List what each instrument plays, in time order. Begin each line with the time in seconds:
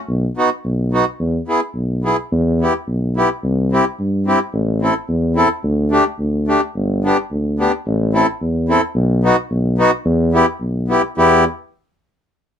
0.09 tuba B1
0.37 accordion B3 D#4 F#4
0.64 tuba B1
0.92 accordion B3 D#4 F#4
1.19 tuba E2
1.48 accordion B3 E4 G#4
1.75 tuba B1
2.03 accordion B3 E4 G#4
2.31 tuba E2
2.61 accordion B3 E4 G4
2.87 tuba B1
3.17 accordion B3 E4 G4
3.43 tuba C2
3.72 accordion C4 E4 G4
3.99 tuba G2
4.26 accordion C4 E4 G4
4.53 tuba A1
4.81 accordion C4 E4 A4
5.08 tuba E2
5.35 accordion C4 E4 A4
5.63 tuba D2
5.91 accordion A3 D4 G4
6.19 tuba D2
6.48 accordion A3 D4 G4
6.75 tuba G1
7.04 accordion B3 D4 G4
7.31 tuba D2
7.59 accordion B3 D4 G4
7.86 tuba A1
8.13 accordion C4 E4 A4
8.41 tuba E2
8.68 accordion C4 E4 A4
8.95 tuba B1
9.23 accordion B3 D#4 F#4
9.50 tuba B1
9.78 accordion B3 D#4 F#4
10.05 tuba E2
10.33 accordion B3 E4 G4
10.60 tuba B1
10.88 accordion B3 E4 G4
11.17 tuba E2, accordion B3 E4 G4